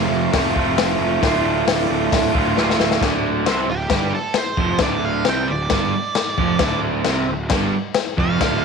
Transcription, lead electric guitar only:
3.71 4.13 G4 medium
4.15 4.36 A4 medium
4.37 4.80 C5 medium
4.82 5.04 D5 medium
5.05 5.26 F5 medium
5.29 5.49 G5 loud
5.48 6.79 D5 medium
8.20 8.65 F5 loud

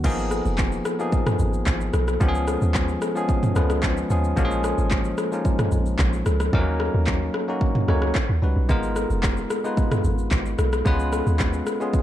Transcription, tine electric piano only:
0.04 0.80 F3 loud
0.04 0.80 A#3 loud
0.04 0.81 B3 loud
0.04 0.81 D#4 loud
0.04 0.81 G#4 loud
0.99 1.86 F3 medium
0.99 1.86 A#3 medium
0.99 1.86 B3 medium
0.99 1.86 D#4 medium
0.99 1.86 G#4 loud
2.20 2.96 F3 loud
2.20 2.97 G#3 loud
2.20 2.97 B3 loud
2.20 2.97 C#4 loud
2.20 2.28 G4 loud
2.28 3.00 G#4 loud
3.15 3.48 F3 medium
3.15 3.48 G#3 medium
3.15 3.48 B3 medium
3.15 3.49 C#4 medium
3.15 3.49 G#4 loud
3.55 3.99 F3 medium
3.55 4.00 G#3 medium
3.55 4.00 B3 medium
3.55 4.00 C#4 medium
3.55 4.00 B4 loud
4.10 4.32 F3 medium
4.10 4.32 G#3 medium
4.10 4.32 B3 medium
4.10 4.32 C#4 medium
4.10 4.33 G#4 medium
4.36 5.13 F3 loud
4.36 5.13 G#3 loud
4.36 5.13 A#3 loud
4.36 5.13 C#4 loud
4.36 4.44 F#4 loud
4.45 5.17 G#4 loud
5.32 6.18 F3 medium
5.32 6.18 G#3 medium
5.32 6.19 A#3 medium
5.32 6.19 C#4 medium
5.32 6.19 D#4 loud
6.53 6.60 F3 medium
6.53 7.29 A#3 loud
6.53 7.29 C#4 loud
6.53 7.29 D#4 loud
6.53 7.30 A#4 loud
6.59 7.32 F#3 loud
7.48 7.80 F#3 medium
7.48 7.80 A#3 medium
7.48 7.81 C#4 medium
7.48 7.81 D#4 medium
7.48 7.81 F#4 loud
7.88 8.15 F#3 medium
7.88 8.15 A#3 medium
7.88 8.16 C#4 medium
7.88 8.16 D#4 medium
7.88 8.16 C#5 loud
8.42 8.64 G3 medium
8.42 8.64 C#4 medium
8.42 8.64 D#4 medium
8.42 8.65 F#4 medium
8.42 8.65 B4 medium
8.69 9.45 G#3 loud
8.69 9.45 B3 loud
8.69 9.45 D#4 loud
8.69 9.46 F4 loud
8.69 9.46 A#4 loud
9.64 10.51 G#3 medium
9.64 10.51 B3 medium
9.64 10.51 D#4 medium
9.64 10.51 F4 medium
9.64 10.52 B4 loud
10.85 11.61 G#3 loud
10.85 11.61 B3 loud
10.85 11.62 C#4 loud
10.85 11.62 F4 loud
10.85 11.62 B4 loud
11.80 12.02 G#3 medium
11.80 12.02 B3 medium
11.80 12.02 C#4 medium
11.80 12.02 F4 medium
11.80 12.02 G#4 loud

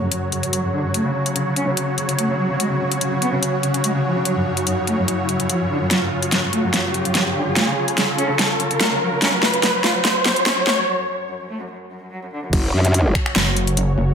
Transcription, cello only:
0.02 0.07 F#2 medium
0.12 0.17 F#2 medium
0.32 0.38 F#2 medium
0.43 0.48 F#2 medium
0.53 0.58 F#3 medium
0.64 0.69 F#2 medium
0.74 0.79 D3 medium
0.85 0.90 F#2 medium
0.94 1.00 A3 medium
1.05 1.10 C#3 medium
1.15 1.21 C#3 medium
1.36 1.41 C#3 medium
1.47 1.52 C#3 medium
1.56 1.62 C#4 medium
1.67 1.72 C#3 medium
1.77 1.83 C#3 medium
1.98 2.03 C#3 medium
2.09 2.14 C#3 medium
2.18 2.24 A3 medium
2.29 2.34 C#3 medium
2.39 2.45 F#3 medium
2.50 2.55 C#3 medium
2.60 2.65 G#3 medium
2.71 2.76 C#3 medium
2.80 2.86 C#3 medium
3.01 3.07 C#3 medium
3.12 3.17 C#3 medium
3.22 3.27 B3 medium
3.33 3.38 C#3 medium
3.43 3.48 C#3 medium
3.63 3.69 C#3 medium
3.74 3.79 C#3 medium
3.84 3.90 G#3 medium
3.95 4.00 C#3 medium
4.05 4.10 F3 medium
4.16 4.21 C#3 medium
4.25 4.31 F#3 medium
4.36 4.41 F#2 medium
4.46 4.52 F#2 medium
4.67 4.72 F#2 medium
4.78 4.83 F#2 medium
4.87 4.93 A3 medium
4.98 5.03 F#2 medium
5.08 5.14 F#2 medium
5.29 5.34 F#2 medium
5.40 5.45 F#2 medium
5.49 5.55 F3 medium
5.61 5.65 F#2 medium
5.70 5.76 D3 medium
5.81 5.86 F#2 medium
5.91 5.96 F#3 medium
6.02 6.07 F#2 medium
6.12 6.17 F#2 medium
6.32 6.38 F#2 medium
6.43 6.48 F#2 medium
6.53 6.58 A3 medium
6.64 6.69 F#2 medium
6.74 6.79 F#2 medium
6.94 7.00 F#2 medium
7.05 7.10 F#2 medium
7.15 7.20 F#3 medium
7.26 7.31 F#2 medium
7.36 7.41 D3 medium
7.47 7.52 F#2 medium
7.56 7.62 A3 loud
7.67 7.72 C#3 medium
7.77 7.83 C#3 medium
7.98 8.03 C#3 medium
8.09 8.14 C#3 medium
8.18 8.24 C#4 loud
8.29 8.34 C#3 medium
8.39 8.45 C#3 medium
8.60 8.65 C#3 medium
8.71 8.76 C#3 medium
8.80 8.86 A3 medium
8.91 8.96 C#3 medium
9.01 9.07 F#3 medium
9.12 9.17 C#3 medium
9.22 9.27 C#4 medium
9.33 9.38 F#3 medium
9.42 9.48 F#3 medium
9.63 9.69 F#3 medium
9.74 9.79 F#3 medium
9.84 9.89 F4 loud
9.95 10.00 F#3 medium
10.04 10.10 F#3 medium
10.25 10.31 F#3 medium
10.36 10.41 F#3 medium
10.46 10.51 C#4 medium
10.57 10.62 F#3 medium
10.67 10.72 A3 medium
10.78 10.83 F#3 medium
10.87 10.93 F#3 loud
10.98 11.03 F#2 medium
11.08 11.14 F#2 medium
11.29 11.34 F#2 medium
11.40 11.45 F#2 medium
11.49 11.55 A3 medium
11.60 11.65 F#2 medium
11.70 11.76 F#2 medium
11.91 11.96 F#2 medium
12.02 12.07 F#2 medium
12.11 12.17 F#3 medium
12.22 12.27 F#2 medium
12.32 12.38 D3 medium
12.43 12.48 F#2 medium

